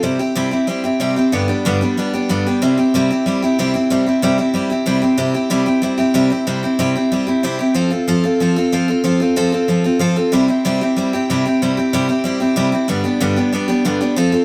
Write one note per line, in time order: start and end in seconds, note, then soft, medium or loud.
0.03 0.19 C3 medium
0.03 0.19 G3 medium
0.03 0.20 C4 medium
0.03 0.19 E4 medium
0.03 0.18 G4 medium
0.19 0.35 C4 soft
0.19 0.35 E4 medium
0.19 0.36 G4 medium
0.35 0.52 C3 loud
0.35 0.52 G3 medium
0.35 0.52 C4 medium
0.35 0.51 E4 loud
0.35 0.50 G4 loud
0.51 0.67 C4 soft
0.51 0.68 E4 soft
0.51 0.68 G4 medium
0.67 0.84 G3 medium
0.67 0.84 C4 medium
0.67 0.83 E4 medium
0.67 0.83 G4 medium
0.84 0.99 C4 medium
0.84 1.00 E4 medium
0.84 1.00 G4 medium
1.00 1.16 C3 medium
1.00 1.17 G3 medium
1.00 1.17 C4 medium
1.00 1.16 E4 medium
1.00 1.15 G4 medium
1.16 1.33 C4 medium
1.16 1.33 E4 medium
1.16 1.32 G4 medium
1.32 1.49 G2 medium
1.32 1.49 D3 medium
1.32 1.49 G3 medium
1.32 1.48 B3 medium
1.32 1.48 D4 medium
1.32 1.47 G4 medium
1.48 1.65 G3 soft
1.48 1.65 B3 soft
1.48 1.65 D4 medium
1.48 1.64 G4 medium
1.65 1.81 G2 medium
1.65 1.81 D3 medium
1.65 1.82 G3 loud
1.65 1.82 B3 loud
1.65 1.81 D4 medium
1.65 1.80 G4 loud
1.81 1.96 G3 soft
1.81 1.97 B3 soft
1.81 1.97 D4 medium
1.81 1.97 G4 medium
1.97 2.13 G3 medium
1.97 2.14 B3 medium
1.97 2.13 D4 medium
1.97 2.12 G4 medium
2.14 2.29 G3 soft
2.14 2.29 B3 medium
2.14 2.29 D4 medium
2.14 2.30 G4 medium
2.29 2.45 G2 medium
2.29 2.46 D3 medium
2.29 2.46 G3 medium
2.29 2.46 B3 medium
2.29 2.46 D4 loud
2.29 2.45 G4 medium
2.47 2.61 G3 soft
2.47 2.62 B3 medium
2.47 2.62 D4 medium
2.47 2.62 G4 medium
2.62 2.78 C3 medium
2.62 2.78 G3 medium
2.62 2.78 C4 medium
2.62 2.77 E4 medium
2.62 2.76 G4 medium
2.77 2.94 C4 medium
2.77 2.94 E4 medium
2.77 2.94 G4 medium
2.94 3.10 C3 medium
2.94 3.10 G3 medium
2.94 3.11 C4 loud
2.94 3.11 E4 loud
2.94 3.09 G4 loud
3.11 3.26 C4 soft
3.11 3.26 E4 medium
3.11 3.26 G4 medium
3.26 3.42 G3 medium
3.26 3.43 C4 medium
3.26 3.42 E4 medium
3.26 3.41 G4 medium
3.42 3.58 C4 medium
3.42 3.58 E4 medium
3.42 3.58 G4 medium
3.59 3.74 C3 medium
3.59 3.75 G3 medium
3.59 3.75 C4 medium
3.59 3.74 E4 medium
3.59 3.73 G4 medium
3.74 3.90 C4 soft
3.74 3.90 E4 medium
3.74 3.90 G4 medium
3.90 4.06 C3 medium
3.90 4.07 G3 medium
3.90 4.07 C4 medium
3.90 4.06 E4 medium
3.90 4.05 G4 medium
4.06 4.22 C4 medium
4.06 4.22 E4 medium
4.06 4.22 G4 medium
4.22 4.38 C3 medium
4.22 4.39 G3 loud
4.22 4.39 C4 loud
4.22 4.38 E4 loud
4.22 4.37 G4 loud
4.38 4.53 C4 soft
4.38 4.54 E4 medium
4.38 4.54 G4 medium
4.54 4.70 G3 medium
4.54 4.71 C4 medium
4.54 4.70 E4 medium
4.54 4.69 G4 medium
4.70 4.85 C4 medium
4.70 4.86 E4 medium
4.70 4.86 G4 medium
4.86 5.02 C3 medium
4.86 5.03 G3 medium
4.86 5.03 C4 medium
4.86 5.02 E4 medium
4.86 5.00 G4 loud
5.02 5.17 C4 medium
5.02 5.17 E4 medium
5.02 5.17 G4 medium
5.18 5.34 C3 medium
5.18 5.34 G3 medium
5.18 5.35 C4 medium
5.18 5.34 E4 medium
5.18 5.33 G4 medium
5.34 5.49 C4 soft
5.34 5.50 E4 medium
5.34 5.50 G4 medium
5.50 5.67 C3 medium
5.50 5.67 G3 medium
5.50 5.67 C4 loud
5.50 5.66 E4 loud
5.50 5.65 G4 medium
5.66 5.82 C4 medium
5.66 5.82 E4 medium
5.66 5.83 G4 medium
5.82 5.99 G3 medium
5.82 5.99 C4 medium
5.82 5.97 E4 medium
5.82 5.96 G4 medium
5.98 6.14 C4 medium
5.98 6.14 E4 medium
5.98 6.14 G4 medium
6.14 6.31 C3 medium
6.14 6.31 G3 medium
6.14 6.31 C4 medium
6.14 6.30 E4 medium
6.14 6.29 G4 medium
6.30 6.46 C4 soft
6.30 6.46 E4 medium
6.30 6.47 G4 medium
6.47 6.63 C3 medium
6.47 6.63 G3 medium
6.47 6.63 C4 medium
6.47 6.63 E4 medium
6.47 6.62 G4 medium
6.63 6.78 C4 soft
6.63 6.78 E4 medium
6.63 6.79 G4 medium
6.79 6.95 C3 loud
6.79 6.95 G3 medium
6.79 6.96 C4 medium
6.79 6.95 E4 loud
6.79 6.94 G4 loud
6.95 7.11 C4 medium
6.95 7.12 E4 medium
6.95 7.12 G4 medium
7.12 7.28 G3 medium
7.12 7.28 C4 medium
7.12 7.27 E4 medium
7.12 7.26 G4 medium
7.27 7.43 C4 soft
7.27 7.43 E4 medium
7.27 7.43 G4 medium
7.43 7.60 C3 medium
7.43 7.60 G3 medium
7.43 7.60 C4 medium
7.43 7.59 E4 medium
7.43 7.58 G4 loud
7.59 7.74 C4 soft
7.59 7.75 E4 medium
7.59 7.75 G4 medium
7.74 7.91 F3 medium
7.74 7.91 C4 medium
7.74 7.90 F4 medium
7.74 7.89 A4 medium
7.90 8.07 C4 medium
7.90 8.07 F4 medium
7.90 8.07 A4 medium
8.08 8.24 F3 medium
8.08 8.24 C4 medium
8.08 8.24 F4 medium
8.08 8.22 A4 loud
8.24 8.40 C4 soft
8.24 8.41 F4 medium
8.24 8.40 A4 medium
8.40 8.56 F3 medium
8.40 8.57 C4 medium
8.40 8.57 F4 medium
8.40 8.55 A4 medium
8.56 8.72 C4 medium
8.56 8.72 F4 medium
8.56 8.72 A4 medium
8.72 8.89 F3 medium
8.72 8.89 C4 medium
8.72 8.88 F4 medium
8.72 8.87 A4 medium
8.88 9.03 C4 medium
8.88 9.04 F4 medium
8.88 9.04 A4 medium
9.04 9.20 F3 medium
9.04 9.21 C4 medium
9.04 9.20 F4 medium
9.04 9.19 A4 medium
9.20 9.35 C4 soft
9.20 9.36 F4 medium
9.20 9.36 A4 medium
9.36 9.53 F3 medium
9.36 9.53 C4 loud
9.36 9.53 F4 medium
9.36 9.51 A4 loud
9.52 9.68 C4 soft
9.52 9.68 F4 medium
9.52 9.69 A4 medium
9.68 9.85 F3 medium
9.68 9.85 C4 medium
9.68 9.84 F4 medium
9.68 9.83 A4 medium
9.84 9.99 C4 medium
9.84 9.99 F4 medium
9.84 10.00 A4 medium
9.99 10.16 F3 medium
9.99 10.17 C4 medium
9.99 10.16 F4 loud
9.99 10.15 A4 loud
10.16 10.32 C4 soft
10.16 10.33 F4 medium
10.16 10.33 A4 medium
10.32 10.48 C3 medium
10.32 10.49 G3 medium
10.32 10.49 C4 medium
10.32 10.48 E4 loud
10.32 10.47 G4 medium
10.48 10.64 C4 soft
10.48 10.65 E4 medium
10.48 10.65 G4 medium
10.65 10.81 C3 medium
10.65 10.81 G3 medium
10.65 10.81 C4 medium
10.65 10.81 E4 medium
10.65 10.80 G4 loud
10.81 10.96 C4 medium
10.81 10.97 E4 medium
10.81 10.97 G4 medium
10.96 11.13 G3 medium
10.96 11.13 C4 medium
10.96 11.13 E4 medium
10.96 11.12 G4 medium
11.13 11.30 C4 medium
11.13 11.29 E4 medium
11.13 11.29 G4 medium
11.30 11.46 C3 medium
11.30 11.46 G3 medium
11.30 11.46 C4 medium
11.30 11.45 E4 medium
11.30 11.44 G4 loud
11.46 11.62 C4 soft
11.46 11.62 E4 medium
11.46 11.61 G4 medium
11.62 11.78 C3 medium
11.62 11.78 G3 medium
11.62 11.78 C4 medium
11.62 11.77 E4 medium
11.62 11.76 G4 medium
11.77 11.93 C4 medium
11.77 11.93 E4 medium
11.77 11.93 G4 medium
11.93 12.09 C3 medium
11.93 12.09 G3 loud
11.93 12.10 C4 loud
11.93 12.08 E4 loud
11.93 12.07 G4 loud
12.09 12.24 C4 medium
12.09 12.24 E4 medium
12.09 12.25 G4 medium
12.24 12.41 G3 medium
12.24 12.41 C4 medium
12.24 12.40 E4 medium
12.24 12.39 G4 medium
12.40 12.56 C4 medium
12.40 12.56 E4 medium
12.40 12.56 G4 medium
12.56 12.73 C3 medium
12.56 12.73 G3 medium
12.56 12.73 C4 medium
12.56 12.72 E4 medium
12.56 12.71 G4 loud
12.72 12.89 C4 medium
12.72 12.89 E4 medium
12.72 12.88 G4 medium
12.88 13.05 G2 medium
12.88 13.05 D3 medium
12.88 13.05 G3 medium
12.88 13.04 B3 medium
12.88 13.03 D4 medium
12.88 13.03 G4 medium
13.04 13.20 G3 soft
13.04 13.20 B3 medium
13.04 13.20 D4 medium
13.04 13.21 G4 medium
13.20 13.37 G2 loud
13.20 13.37 D3 loud
13.20 13.37 G3 medium
13.20 13.37 B3 medium
13.20 13.36 D4 loud
13.20 13.35 G4 loud
13.36 13.51 G3 medium
13.36 13.52 B3 medium
13.36 13.52 D4 medium
13.36 13.53 G4 medium
13.52 13.68 G3 medium
13.52 13.68 B3 medium
13.52 13.67 D4 medium
13.52 13.67 G4 medium
13.68 13.84 G3 medium
13.68 13.85 B3 medium
13.68 13.85 D4 medium
13.68 13.85 G4 medium
13.85 14.01 G2 medium
13.85 14.01 D3 medium
13.85 14.01 G3 medium
13.85 14.01 B3 medium
13.85 14.00 D4 loud
13.85 13.99 G4 medium
14.01 14.16 G3 medium
14.01 14.17 B3 medium
14.01 14.17 D4 medium
14.01 14.17 G4 medium
14.16 14.33 F3 medium
14.16 14.33 C4 medium
14.16 14.32 F4 loud
14.16 14.31 A4 medium
14.32 14.45 C4 medium
14.32 14.45 F4 medium
14.32 14.45 A4 medium